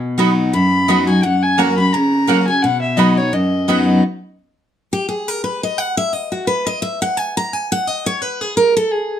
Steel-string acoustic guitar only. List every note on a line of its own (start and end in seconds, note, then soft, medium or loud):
0.00 0.50 B2 loud
0.18 0.51 F#3 medium
0.18 0.52 B3 medium
0.18 0.52 D#4 medium
0.18 0.52 F#4 loud
0.53 1.20 F#2 medium
0.88 1.07 F#3 medium
0.88 1.07 B3 medium
0.88 1.08 D#4 loud
0.88 1.06 F#4 medium
1.07 1.23 D#4 medium
1.07 1.22 F#4 medium
1.23 1.90 F#2 loud
1.58 1.77 F#3 medium
1.58 1.77 A#3 medium
1.58 1.77 C#4 loud
1.58 1.76 F#4 loud
1.78 1.94 C#4 medium
1.78 1.93 F#4 medium
1.94 2.60 C#3 loud
2.27 2.47 F#3 loud
2.27 2.47 A#3 medium
2.27 2.47 C#4 loud
2.27 2.46 F#4 loud
2.48 2.64 C#4 soft
2.48 2.63 F#4 medium
2.64 3.30 B2 medium
2.97 3.16 F#3 medium
2.97 3.17 B3 medium
2.97 3.17 D#4 medium
2.97 3.16 F#4 medium
3.17 3.33 D#4 soft
3.17 3.32 F#4 medium
3.33 4.00 F#2 loud
3.68 4.02 F#3 medium
3.68 4.02 B3 loud
3.68 4.02 D#4 loud
3.68 4.02 F#4 loud
4.93 5.08 G4 medium
5.09 5.28 G#4 medium
5.28 5.43 A#4 medium
5.44 5.62 B4 medium
5.63 5.78 D#5 medium
5.78 5.97 F#5 loud
5.97 6.13 E5 loud
6.13 6.32 D#5 medium
6.32 6.47 F#4 medium
6.47 6.66 B4 medium
6.67 6.82 D#5 medium
6.82 7.01 E5 medium
7.02 7.17 F#5 loud
7.17 7.36 G#5 medium
7.37 7.53 A#5 loud
7.53 7.71 G#5 medium
7.72 7.87 F#5 loud
7.87 8.06 D#5 medium
8.06 8.22 C#5 medium
8.22 8.41 B4 medium
8.41 8.56 G#4 medium
8.57 8.76 A#4 medium
8.77 8.92 A4 medium
8.92 9.20 G#4 medium